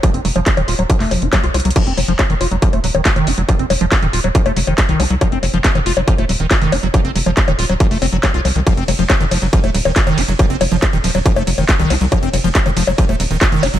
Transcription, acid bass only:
X:1
M:4/4
L:1/16
Q:1/4=139
K:none
V:1 name="Acid bass" clef=bass
F, C _G, F, F _E, F G, F, A, F, F G, F F G, | F, C _G, F, F _E, F G, F, A, G, E, F E, F G, | F, C _G, F, F _E, F G, F, A, G, E, F E, F G, | F, C _G, F, F _E, F G, F, A, G, E, F E, F G, |
F, C _G, F, F _E, F G, F, A, C G, E, F F, E, | F, C _G, F, F _E, F, G, F, A, G, E, F E, F G, | F, C _G, F, F _E, F, G, F, A, G, E, F E, F G, | F, C _G, F, F _E, F, G, F, A, G, E, F E, F G, |]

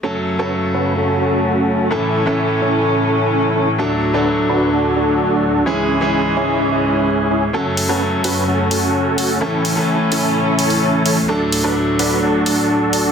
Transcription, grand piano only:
X:1
M:4/4
L:1/16
Q:1/4=128
K:F#m
V:1 name="Grand piano"
[F,A,CA]3 [F,A,CA] z12 | [A,,E,A,CA]3 [A,,E,A,CA] z12 | [F,A,DA]3 [F,A,DA] z12 | [E,G,CG]3 [E,G,CG] z12 |
[F,A,CA]3 [F,A,CA] z12 | [A,,E,A,CA]3 [A,,E,A,CA] z12 | [F,A,DA]3 [F,A,DA] z12 |]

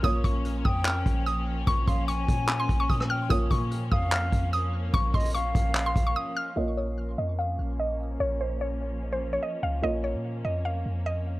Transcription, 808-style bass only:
X:1
M:4/4
L:1/16
Q:1/4=147
K:Bbm
V:1 name="808-style bass" clef=bass
B,,,2 B,,,4 F,,4 B,,,6 | B,,,2 B,,,4 B,,4 B,,,2 B,,4 | B,,,2 B,,4 F,,4 F,,6 | B,,,2 B,,,4 B,,,4 B,,,2 z4 |
B,,,6 F,,4 B,,,6 | B,,,12 z2 D,,2 | B,,,3 B,,3 F,,4 F,,6 |]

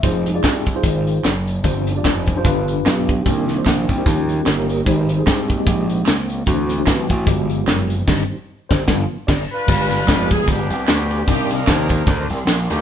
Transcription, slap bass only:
X:1
M:4/4
L:1/8
Q:"Swing" 1/4=149
K:Gphr
V:1 name="Slap bass" clef=bass
F,,,2 C,,2 A,,,2 ^F,,,2 | G,,,2 F,,,2 G,,,2 =B,,,2 | C,,2 B,,, C,, E,,2 G,,,2 | A,,,2 C,,2 B,,,2 _D,,2 |
D,,2 C,, =A,,, G,,,2 ^F,,,2 | G,,, z2 G,,, G,,, z G,,, z | G,,,2 F,,,2 G,,, C,, D,,2 | C,,2 E,,2 D,, C,, B,,, D,, |]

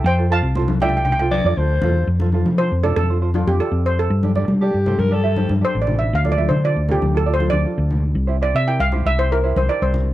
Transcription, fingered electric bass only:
X:1
M:4/4
L:1/16
Q:1/4=118
K:F
V:1 name="Fingered electric bass" clef=bass
F,,3 C,,8 F,, D,,2 E,,2 | F,,3 F,2 F,,2 F,,4 F,, z F,,3 | G,,3 G,2 G,,2 G,,4 G,, z A,,,3 | D,,3 D,2 D,,2 D,,4 D,, z D,,3 |
C,,3 C,2 C,,2 C,,4 C,, z C,,3 |]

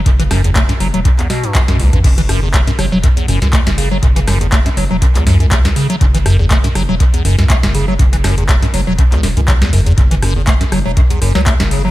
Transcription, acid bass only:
X:1
M:4/4
L:1/16
Q:"Swing 16ths" 1/4=121
K:F#m
V:1 name="Acid bass" clef=bass
F,, E, F,, E,, A, F,, F, F, F,, E,, B,, =G,, F,, F,, F,,, G,, | F,, E, F,, E,, A, F,, F, F, F,, E,, F,, F,, A, F,, C, F, | F,, E, F,, E,, A, F,, F, F, F,, E,, F,, F,, A, F,, C, F, | F,, E, F,, E,, A, F,, F, F, F,, E,, F,, F,, A, F,, C, F, |
F,, E, F,, E,, A, F,, F, F, F,, E,, F,, F,, F, E,, F,, E,, | F,, E, F,, E,, A, F,, F, F, F,, E,, F,, F, A, F,, C, F, |]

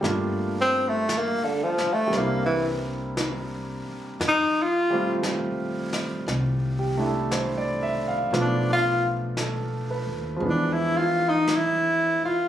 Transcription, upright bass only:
X:1
M:4/4
L:1/8
Q:"Swing" 1/4=58
K:F
V:1 name="Upright bass" clef=bass
G,,,3 z C,,3 z | F,,4 C,,4 | =B,,,3 _E,, =E,,3 z |]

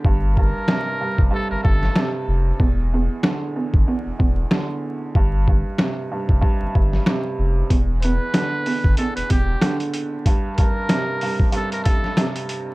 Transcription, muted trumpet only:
X:1
M:4/4
L:1/16
Q:"Swing 16ths" 1/4=94
K:G
V:1 name="Muted trumpet"
z2 _B6 A B A3 z3 | z16 | z16 | z2 B6 A B G3 z3 |
z2 _B6 A B A3 z3 |]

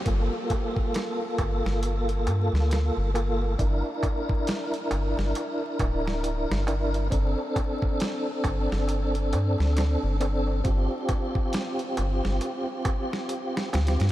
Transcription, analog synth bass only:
X:1
M:4/4
L:1/16
Q:"Swing 16ths" 1/4=68
K:Gm
V:1 name="Analog synth bass" clef=bass
G,,, z4 z G,,, G,,,3 G,, D,,2 G,,,3 | G,,, z4 z G,,, G,,, z2 D,,,3 G,,,3 | G,,, z4 z G,,, G,,,3 G,, D,,2 G,,,3 | G,,, z4 z G,,, G,,, z6 D,, G,, |]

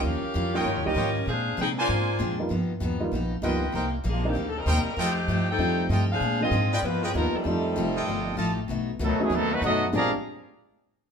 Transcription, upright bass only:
X:1
M:4/4
L:1/8
Q:"Swing" 1/4=194
K:Fdor
V:1 name="Upright bass" clef=bass
E,, z F,,2 (3G,, E,, _D,, A,,2 | B,,2 C,2 A,,2 F,,2 | G,,2 ^D,,2 ^A,,,2 _D,,2 | C,,2 B,,,2 D,,2 E,, z |
F,,2 G,,2 F,,2 G,,2 | B,,2 A,,2 G,,2 ^D,, z | F,,2 F,,,2 G,,,2 =A,,,2 | =B,,,2 _D,, z ^D,,2 ^F,,2 |
B,,, z6 z |]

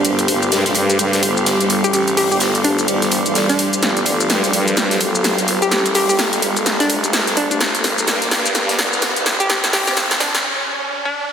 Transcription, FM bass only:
X:1
M:4/4
L:1/16
Q:"Swing 16ths" 1/4=127
K:Gm
V:1 name="FM bass" clef=bass
G,,,2 G,,,2 G,, B,,, G,,2 G,,2 G,,,3 G,,,2 A,,,- | A,,,3 G,,,3 G,,,2 G,,,3 G,,,2 z3 | G,,,2 G,,,2 G,, B,,, G,,2 G,,2 G,,,3 G,,,2 A,,,- | A,,,3 G,,,3 G,,,4 F,,,2 G,,,3 G,,, |
G,,,2 G,,,2 G,, B,,, G,,2 G,,2 G,,,3 G,,,2 A,,,- | A,,,3 G,,,3 G,,,2 z8 |]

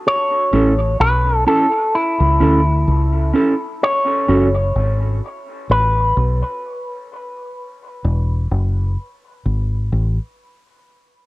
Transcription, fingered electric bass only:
X:1
M:4/4
L:1/16
Q:"Swing 16ths" 1/4=64
K:F#m
V:1 name="Fingered electric bass" clef=bass
z2 A,,,2 B,,,2 z3 C,, D,,2 C,,2 z2 | z2 F,,,2 G,,,2 z2 A,,,2 B,,, z4 z | z2 E,,,2 F,,,2 z2 G,,,2 A,,, z4 z |]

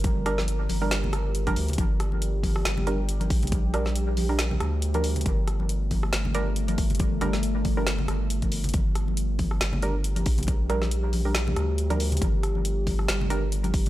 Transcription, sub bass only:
X:1
M:4/4
L:1/8
Q:"Swing 16ths" 1/4=138
K:Gm
V:1 name="Sub bass" clef=bass
G,,,3 G,,,4 D,, | G,,,4 G,,,3 B,,,- | B,,,4- B,,, D,,3 | G,,,4 G,,,3 G,,,- |
G,,,3 G,,,2 G,,,3 | G,,,4 G,,,3 B,,,- | B,,,4- B,,, D,,3 | G,,,4 G,,,3 G,,, |]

